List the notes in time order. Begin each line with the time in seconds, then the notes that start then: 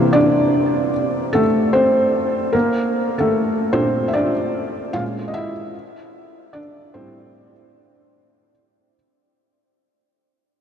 Already playing: C3 E3 A#3 C4 C5
0.13 D4 D5
1.33 A3 A4
1.73 C4 C5
2.53 A#3 A#4
3.18 A3 A4
3.73 A#2 A3 C4 D4 C5
4.08 E5
4.14 D4 D5
4.93 A#2 G#3 C#4 F4 F5
5.28 D#5
5.34 E4 E5
6.53 D4 D5
6.94 A2 G3 C4 C5